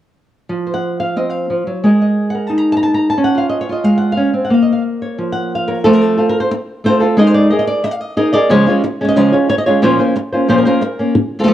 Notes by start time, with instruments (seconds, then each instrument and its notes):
0.49 nylon-string guitar F3
0.67 nylon-string guitar C5
0.74 nylon-string guitar F#5
1.00 nylon-string guitar F5
1.16 nylon-string guitar C4 D#5
1.30 nylon-string guitar F5
1.50 nylon-string guitar F3
1.67 nylon-string guitar F#3
1.84 nylon-string guitar G#3 G#4 A#4 D#5
2.02 nylon-string guitar D#5
2.30 nylon-string guitar F#5
2.35 nylon-string guitar A#4
2.47 nylon-string guitar D#4 A5
2.58 nylon-string guitar A#5
2.72 nylon-string guitar A5
2.77 nylon-string guitar A#5
2.83 nylon-string guitar A5
2.94 nylon-string guitar A#5
3.10 nylon-string guitar A5
3.17 nylon-string guitar C#4
3.24 nylon-string guitar F#5
3.35 nylon-string guitar F4 F5
3.49 nylon-string guitar D#5
3.61 nylon-string guitar C#5
3.69 nylon-string guitar F4 D#5
3.84 nylon-string guitar G#3 F5
3.98 nylon-string guitar F#5
4.12 nylon-string guitar F5
4.17 nylon-string guitar C#4
4.34 nylon-string guitar C4
4.45 nylon-string guitar F#5
4.50 nylon-string guitar A#3 F5
4.62 nylon-string guitar D#5
4.73 nylon-string guitar F5
5.02 nylon-string guitar C#5
5.18 nylon-string guitar F3
5.32 nylon-string guitar F#5
5.55 nylon-string guitar F5
5.68 nylon-string guitar A#4 C#5
5.84 nylon-string guitar F3 A3 C4 F4 A4
5.93 nylon-string guitar A#4
6.01 nylon-string guitar A4
6.17 nylon-string guitar C4 F4 A4
6.29 nylon-string guitar A#4
6.40 nylon-string guitar C5
6.51 muted nylon-string guitar stroke
6.84 nylon-string guitar A3 C4 F4 A4 C5
7.00 nylon-string guitar C4 F4 A4
7.17 nylon-string guitar G#3 D#4 G#4 A#4 D#5
7.27 nylon-string guitar C5
7.34 nylon-string guitar D5
7.50 nylon-string guitar G#4 A#4 D#5
7.59 nylon-string guitar D#5
7.67 nylon-string guitar D5
7.84 nylon-string guitar D#5, muted nylon-string guitar stroke
7.91 nylon-string guitar F5
8.01 nylon-string guitar D#5
8.17 nylon-string guitar D#4 G#4 A#4 D#5
8.33 nylon-string guitar G#4 A#4 D5 D#5
8.50 nylon-string guitar C#3 F3 G#3 C#4 F4 C#5
8.67 nylon-string guitar G#3 C#4 F4 C#5
8.84 muted nylon-string guitar stroke
9.01 nylon-string guitar G#3 C#4 C#5
9.09 nylon-string guitar D#5
9.16 nylon-string guitar C#3 F3 G#3 C#4 F4 C#5
9.33 nylon-string guitar G#3 C#4 F4 C#5
9.49 nylon-string guitar C#5, muted nylon-string guitar stroke
9.58 nylon-string guitar D#5
9.66 nylon-string guitar G#3 C#4 F4 C#5
9.82 nylon-string guitar A#2 F3 A#3 C#4 F4 C5 C#5
9.99 nylon-string guitar A#3 C#4 F4 C5
10.16 muted nylon-string guitar stroke
10.33 nylon-string guitar A#3 C#4 F4 C5
10.49 nylon-string guitar A#2 F3 A#3 C#4 F4 C5
10.58 nylon-string guitar A#4
10.65 nylon-string guitar A#3 C#4 F4 A#4 C5
10.81 muted nylon-string guitar stroke
10.99 nylon-string guitar A#3 C#4
11.15 muted nylon-string guitar stroke
11.39 nylon-string guitar A3 C4 F4 A4
11.44 nylon-string guitar A3 C4 F4 A4
11.48 nylon-string guitar F3 A3